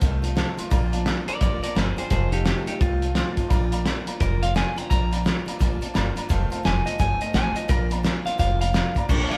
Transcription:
Already playing: C6
0.00 C2 F2 C3 D#3 A3 D#4 F4 C5 F5 A5, kick, closed hi-hat
0.22 D#3 A3 D#4 F4 C5 F5 A5, closed hi-hat
0.35 D#3 A3 D#4 F4 C5 F5 A5, snare, closed hi-hat
0.57 D#3 A3 D#4 F4 C5 F5 C6, muted upright bass stroke, closed hi-hat
0.69 A#1 A#2 F3 A#3 D4 F4 D5 F5 A#5, kick, closed hi-hat
0.92 A#3 D4 F4 D5 F5 A5, closed hi-hat
1.05 F3 A#3 D4 F4 D5 F5 A#5, snare, closed hi-hat
1.27 A#3 D4 F4 A#4 D5 F5 A#5, muted upright bass stroke, closed hi-hat
1.40 A1 A#2 F3 A#3 D4 F4 A#4 D5 F5 A#5, kick, closed hi-hat
1.61 D4 F4 A#4 D5 F5 A5, muted upright bass stroke, closed hi-hat
1.66 A#3
1.74 G1 F3 A#3 D4 G#4 D5 F5 A#5, snare, closed hi-hat
1.78 F4 C5
1.96 A#3 D4 F4 G#4 C5 D5 F5 G5, muted upright bass stroke, closed hi-hat
2.09 F1 F2 C3 D#3 A3 D#4 F4 G#4 C5 F5 A5, kick, closed hi-hat
2.31 D#3 A3 D#4 F4 G4 C5 F5 A5, closed hi-hat
2.44 D#3 A3 D#4 F4 G4 C5 A5, snare, closed hi-hat
2.66 D#3 A3 D#4 F4 G4 C5 F5 G5, muted upright bass stroke, closed hi-hat
2.79 C2 F2 C3 D#3 A3 D#4 F4 C5 F5 G5, kick, closed hi-hat
3.01 A3 D#4 F4 C5 F5 A5, closed hi-hat
3.05 D#3
3.14 D#3 A3 D#4 C5 F5 C6, snare, closed hi-hat
3.19 F4
3.35 D#4 F4 C5 F5 A5, muted upright bass stroke, kick, closed hi-hat
3.39 D#3 A3
3.48 A#1 A#2 F3 A#3 D4 D5 F5 A#5, kick, closed hi-hat
3.53 F4
3.71 D4 F4 D5 F5 A#5, closed hi-hat
3.75 A#3
3.84 F3 A#3 D4 D5 F5 A#5, snare, closed hi-hat
3.88 F4
4.06 A#3 D4 F4 D5 F5 A#5, muted upright bass stroke, closed hi-hat
4.20 F1 A#2 F3 A#3 D4 F4 A#4 D5 F5 A#5, kick, closed hi-hat
4.41 A#3 D4 F4 D5 F5 C6, closed hi-hat
4.54 F3 A#3 D4 F4 D5 F5 G#5 C6, snare, closed hi-hat
4.76 D4 F4 D5 F5 G5 A#5, muted upright bass stroke, closed hi-hat
4.80 A#3
4.90 A#1 A#2 F3 A#3 D4 F4 D5 F5 A#5, kick, closed hi-hat
5.11 A#3 D4 F4 D5 F5 A#5, closed hi-hat
5.24 F3 A#3 D4 F4, snare, closed hi-hat
5.46 A#3 D4 F4 D5 F5 A#5, muted upright bass stroke, closed hi-hat
5.59 A1 A#2 F3 A#3 D4 F4 D5 F5 A#5, kick, closed hi-hat
5.81 A#3 D4 F4 D5 F5 A5, muted upright bass stroke, closed hi-hat
5.94 G1 F3 A#3 D4 F4 D5 F5 A#5, snare, closed hi-hat
6.16 A#3 D4 F4 D5 F5 A#5, muted upright bass stroke, closed hi-hat
6.29 F1 F2 C3 D#3 A3 D#4 F4 C5 F5 A5, kick, closed hi-hat
6.50 D#3 A3 D#4 F4 C5 F5 A5, closed hi-hat
6.63 F1 D#3 A3 F4 G#5, snare, closed hi-hat
6.85 D#3 A3 D#4 F4 C5 D#5 F5 A5, muted upright bass stroke, closed hi-hat
6.99 G1 F2 C3 D#3 A3 D#4 F4 C5 F5 G#5, kick, closed hi-hat
7.20 D#3 A3 D#4 F4 C5 D#5 F5 A5, closed hi-hat
7.33 A1 D#3 A3 D#4 F4 C5 F5 G#5 A5, snare, closed hi-hat
7.54 D#3 A3 D#4 F4 C5 D#5 F5 A5, muted upright bass stroke, closed hi-hat
7.68 A#1 A#2 F3 A#3 D4 F4 A#4 D5 F5 A#5, kick, closed hi-hat
7.90 A#3 D4 F4 D5 F5 A#5, closed hi-hat
8.03 F3 A#3 D4 F4 D5 F5 A#5, snare, closed hi-hat
8.25 A#3 D4 F4 D5 F5 C6, muted upright bass stroke, closed hi-hat
8.38 F1 A#2 F3 A#3 D4 F4 D5 F5 A#5, kick, closed hi-hat
8.60 A#3 D4 F4 D5 F5 A#5, closed hi-hat
8.73 F3 A#3 D4 F4 D5 F5 A#5, snare, closed hi-hat
8.95 A#3 D4 F4 D5 F5 A#5, kick, closed hi-hat
9.09 A#1 A#2 F3 A#3 D4 F4, kick, crash
9.28 D4 F4 D5 E5, muted upright bass stroke, snare, ride
9.33 A#3 F5

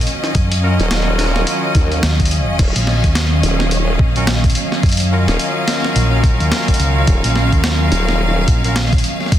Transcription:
Already playing: D#3 F#3 C#4 A#4 D#5 F5
0.01 closed hi-hat
0.07 closed hi-hat
0.24 snare
0.35 F#2, kick, closed hi-hat
0.52 closed hi-hat
0.63 C#4 F4 F#4 A#4
0.80 D#1 C#4 F4 F#4 A#4, closed hi-hat
0.91 D#1, snare, closed hi-hat
1.19 snare, closed hi-hat
1.36 snare
1.47 closed hi-hat
1.75 D#2, kick, closed hi-hat
1.92 closed hi-hat
2.03 D#2, snare, closed hi-hat
2.20 kick, closed hi-hat
2.25 closed hi-hat
2.31 closed hi-hat
2.59 D#1 F#3, kick, closed hi-hat, crash
2.76 A#1, closed hi-hat
2.87 snare
3.04 D#2, kick, closed hi-hat
3.11 F5
3.15 snare, closed hi-hat
3.43 D#1, closed hi-hat
3.60 snare
3.71 closed hi-hat
3.99 A#1, kick
4.16 C#4 F4 F#4 A#4, closed hi-hat
4.27 snare, closed hi-hat
4.44 kick, closed hi-hat
4.50 closed hi-hat
4.55 closed hi-hat
4.72 snare
4.83 F#2, kick, closed hi-hat
4.86 closed hi-hat
4.89 closed hi-hat
4.92 closed hi-hat
4.97 closed hi-hat
5.00 closed hi-hat
5.11 C#4 F4 F#4 A#4
5.28 D#1 C#4 F4 F#4 A#4, snare, closed hi-hat
5.39 closed hi-hat
5.68 snare, closed hi-hat
5.84 snare
5.96 A#1, closed hi-hat
6.24 kick, closed hi-hat
6.40 D#2, closed hi-hat
6.52 snare, closed hi-hat
6.68 kick, closed hi-hat
6.74 closed hi-hat
6.79 C#2, closed hi-hat
7.07 D#1, kick, closed hi-hat
7.24 A#1, closed hi-hat
7.36 snare
7.52 D#2, kick, closed hi-hat
7.64 snare, closed hi-hat
7.92 D#1, closed hi-hat
8.09 snare
8.48 A#1, kick, closed hi-hat
8.64 C#4 F4 F#4 A#4, closed hi-hat
8.76 snare, closed hi-hat
8.93 kick, closed hi-hat
8.98 closed hi-hat
9.04 closed hi-hat
9.21 snare
9.26 snare
9.32 F#2, kick, snare, closed hi-hat

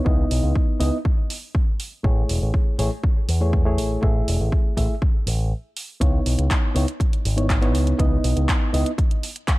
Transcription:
0.05 C#2 B3 D#4 E4 D#5, kick
0.31 B1, open hi-hat
0.43 C#2
0.56 kick
0.79 C#2 B3 D#4 E4 D#5, open hi-hat
1.05 kick
1.30 open hi-hat
1.55 kick
1.80 open hi-hat
2.03 A1 A3 E4 G#4 C#5, kick
2.29 E1, open hi-hat
2.42 A1
2.54 kick
2.78 A1 A3 E4 G#4 C#5, open hi-hat
3.04 kick
3.28 E2, open hi-hat
3.41 A3 E4 G#4 C#5
3.53 kick
3.65 A3 E4 G#4 C#5
3.78 A1, open hi-hat
4.02 A1 A3 E4 G#4 E5, kick
4.28 E1, open hi-hat
4.40 A1
4.52 kick
4.76 A1 A3 E4 G#4 E5, kick, open hi-hat
5.02 kick
5.26 A1, open hi-hat
5.77 open hi-hat
6.00 C#2 B3 D#4 E4 C#5, kick, closed hi-hat
6.26 B1, open hi-hat
6.38 C#2, closed hi-hat
6.50 kick, clap, closed hi-hat
6.75 C#2 B3 D#4 E4 C#5, open hi-hat
6.88 closed hi-hat
7.00 kick, closed hi-hat
7.13 closed hi-hat
7.25 G#1, open hi-hat
7.37 B3 D#4 E4 C#5, closed hi-hat
7.50 kick, clap, closed hi-hat
7.62 B3 D#4 E4 C#5, clap, closed hi-hat
7.74 C#2, open hi-hat
7.87 closed hi-hat
7.98 C#2 B3 D#4 E4 D#5, kick, closed hi-hat
8.24 B1, open hi-hat
8.36 C#2, closed hi-hat
8.49 kick, clap, closed hi-hat
8.73 C#2 B3 D#4 E4 D#5, open hi-hat
8.86 closed hi-hat
8.98 kick, closed hi-hat
9.11 closed hi-hat
9.23 open hi-hat
9.36 closed hi-hat
9.48 kick, clap, closed hi-hat

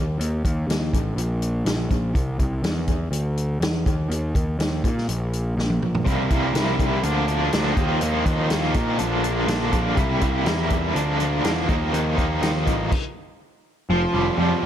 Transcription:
Already playing: D#2
0.19 D#2, closed hi-hat
0.45 D#2, kick, closed hi-hat
0.67 D#2, snare, closed hi-hat
0.93 A1, kick, closed hi-hat
1.16 A#1, closed hi-hat
1.42 closed hi-hat
1.65 A#1, snare, closed hi-hat
1.91 A#1, kick, closed hi-hat
2.15 C2, kick, closed hi-hat
2.39 C2, kick, closed hi-hat
2.63 E2, snare, closed hi-hat
2.88 kick, closed hi-hat
3.11 D2, closed hi-hat
3.37 closed hi-hat
3.60 E2, snare, closed hi-hat
3.86 D#2, kick, closed hi-hat
4.09 D#2, closed hi-hat
4.35 D#2, kick, closed hi-hat
4.59 D#2, snare, closed hi-hat
4.84 A#2, kick, closed hi-hat
4.98 snare
5.09 A#1, closed hi-hat
5.33 closed hi-hat
5.57 A#1, snare
5.70 high tom
5.82 A#1, mid tom
5.95 floor tom
6.05 C2 C3 G3 A#3 E4, kick, closed hi-hat
6.30 C2 G3 A#3 E4, kick, closed hi-hat
6.54 C2 C3 G3 A#3 E4, snare, closed hi-hat
6.79 kick, closed hi-hat
7.03 D2 D3 F3 A#3 D4, closed hi-hat
7.27 F3 A#3 D4, closed hi-hat
7.51 D2 D3 F3 A#3 D4, snare, closed hi-hat
7.76 D#2 D#3 F3 A#3 D#4, kick, closed hi-hat
8.01 D#2 D#3 F3 A#3 D#4, closed hi-hat
8.25 D#2 F3 A#3 D#4, kick, closed hi-hat
8.50 D#2 D#3 F3 A#3 D#4, snare, closed hi-hat
8.74 A#2, kick, closed hi-hat
8.98 A#1 A#2 D3 F3 A#3 D4, closed hi-hat
9.23 F3 A#3 D4, closed hi-hat
9.47 A#1 D3 F3 A#3 D4, snare, closed hi-hat
9.71 A#1 F3 A#3 D4, kick, closed hi-hat
9.96 C2 C3 G3 A#3 E4, kick, closed hi-hat
10.21 C2 G3 A#3 E4, kick, closed hi-hat
10.44 E2 C3 G3 A#3 E4, snare, closed hi-hat
10.70 kick, closed hi-hat
10.94 D2 D3 F3 A#3 D4, closed hi-hat
11.17 F3 A#3 D4, closed hi-hat
11.42 E2 D3 F3 A#3 D4, snare, closed hi-hat
11.69 D#2 D#3 F3 A#3 D#4, kick, closed hi-hat
11.92 D#2 D#3 F3 A#3 D#4, closed hi-hat
12.17 D#2 F3 A#3 D#4, kick, closed hi-hat
12.41 D#2 D#3 F3 A#3 D#4, snare, closed hi-hat
12.67 A1, kick, closed hi-hat
12.92 kick, crash
13.89 F1 F3
14.14 F1 G3
14.38 F2 F3

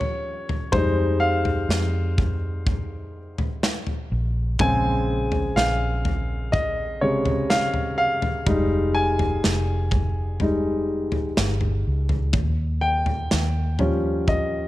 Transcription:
Already playing: D#2 F3 G3 C#4 C#5
0.01 floor tom
0.49 floor tom
0.72 F2 G3 G#3 D#4 C5, kick, floor tom
1.20 F5
1.45 floor tom
1.69 F2, snare
2.18 kick, floor tom
2.67 kick, floor tom
3.38 floor tom
3.63 snare
3.87 floor tom
4.12 A#1
4.59 A#1 C#3 G#3 C4 G#5, kick, floor tom
5.32 floor tom
5.56 A#1 F5, snare
6.05 floor tom
6.52 D#5, kick, floor tom
7.01 C3 C#3 G#3 C#5
7.25 floor tom
7.50 F5, snare
7.74 floor tom
7.98 F5
8.22 floor tom
8.47 F1 G3 G#3 D#4, kick, floor tom
8.95 G#5
9.19 floor tom
9.44 F1, snare
9.91 kick, floor tom
10.40 G3 G#3 D#4, floor tom
11.12 floor tom
11.37 G1, snare
11.61 floor tom
11.87 C#2
12.09 floor tom
12.33 D#2, kick, floor tom
12.81 G5
13.06 floor tom
13.31 D#2, snare
13.79 F3 G3 C#4, floor tom
14.28 D#5, kick, floor tom

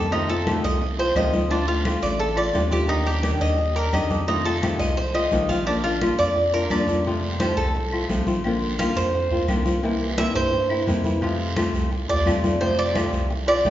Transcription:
Already playing: F2 A#3 C4 G4 A4
0.12 C3 D#3 A3 C4 D#4 F4, high conga, long guiro, claves
0.29 A3 C4 F4 A4, high conga
0.47 C3 D#3 A3 C4 F4, high conga, short guiro, claves
0.63 C2 D#5, high conga, short guiro
0.81 muted nylon-string guitar stroke, high conga, long guiro
0.99 A3 C4 F4 C5, high conga
1.15 D2 C3 D#3 A3 C4 F4 D#5, high conga, short guiro, claves
1.33 A3 C4 F4, high conga, short guiro
1.50 D3 A3 C4 D4 F4, high conga, long guiro
1.67 A3 C4 F4, high conga
1.85 D3 A3 C4 F4, high conga, short guiro, claves
2.02 A1 D5, short guiro
2.19 A4, muted nylon-string guitar stroke, high conga, long guiro
2.36 A3 C4 F4 D5, high conga, claves
2.53 D#2 D3 A3 C4 F4, high conga, short guiro
2.71 A3 C4 F4 G4, high conga, short guiro
2.87 D#3 G3 D4 D#4 G4, high conga, long guiro, claves
3.05 G3 D4 G4, high conga
3.23 D#3 G3 D4 G4, high conga, short guiro, claves
3.41 D#2 D#5, high conga, short guiro
3.58 muted nylon-string guitar stroke, high conga, long guiro
3.75 G3 D4 G4 A#4, high conga
3.93 F2 D#3 G3 D4 G4 D#5, high conga, short guiro, claves
4.10 G3 D4 G4, high conga, short guiro
4.28 C3 D#3 A3 C4 D#4 F4, high conga, long guiro
4.45 A3 C4 F4 A4, high conga
4.62 C3 D#3 A3 C4 F4, high conga, short guiro, claves
4.79 C2 D#5, short guiro
4.97 C5, muted nylon-string guitar stroke, high conga, long guiro
5.14 A3 C4 F4 D#5, high conga, claves
5.31 A#1 C3 D#3 A3 C4 F4, high conga, short guiro
5.49 A3 C4 F4, high conga, short guiro
5.66 F3 A#3 D4 F4, high conga, long guiro, claves
5.83 A#3 D4 F4, high conga
6.01 F3 A#3 D4 F4, high conga, short guiro, claves
6.19 F2 D5, high conga, short guiro
6.36 muted nylon-string guitar stroke, high conga, long guiro
6.53 A#3 D4 F4 A#4, high conga
6.70 F2 F3 A#3 D4 F4 D5, high conga, short guiro, claves
6.88 A#3 D4 F4, high conga, short guiro
7.05 C3 F3 A3 C4 F4, high conga, long guiro
7.23 high conga
7.40 C3 F3 A3 C4 F4 C5, high conga, short guiro, claves
7.57 C2 A4, short guiro
7.75 muted nylon-string guitar stroke, high conga, long guiro
7.92 A3 C4 F4, high conga, claves
8.09 A#1 C3 F3 A3 C4 F4, high conga, short guiro
8.27 A3 C4 F4, high conga, short guiro
8.44 D3 A#3 C4 F4, high conga, long guiro, claves
8.62 high conga
8.79 D3 A#3 C4 F4 F5, high conga, short guiro, claves
8.95 F2 C5, high conga, short guiro
9.13 muted nylon-string guitar stroke, high conga, long guiro
9.31 D2 A#3 C4 F4, high conga
9.48 C2 D3 A#3 C4 F4, high conga, short guiro, claves
9.65 A#3 C4 F4, high conga, short guiro
9.83 C3 E3 A#3 C4 E4, high conga, long guiro
10.01 high conga
10.17 C3 E3 A#3 C4 E4 E5, high conga, short guiro, claves
10.35 G2 C5, short guiro
10.53 muted nylon-string guitar stroke, high conga, long guiro
10.70 A#3 C4 E4, high conga, claves
10.86 F2 C3 E3 A#3 C4 E4, high conga, short guiro
11.04 A#3 C4 E4, high conga, short guiro
11.21 C3 F3 A3 C4 F4, high conga, long guiro, claves
11.39 high conga
11.56 C3 F3 A3 C4 F4, high conga, short guiro, claves
11.74 C2, high conga, short guiro
11.92 muted nylon-string guitar stroke, high conga, long guiro
12.08 D#2 A3 C4 F4 D5, high conga
12.25 F2 C3 F3 A3 C4 F4, high conga, short guiro, claves
12.43 A3 C4 F4, high conga, short guiro
12.60 C3 F3 A3 C4 F4 C5, high conga, long guiro
12.79 D5, high conga
12.95 C3 F3 A3 C4 F4, high conga, short guiro, claves
13.13 C2, short guiro
13.30 muted nylon-string guitar stroke, high conga, long guiro
13.47 A3 C4 F4 D5, high conga, claves
13.65 A#1 C3 F3 A3 C4 F4, high conga, short guiro

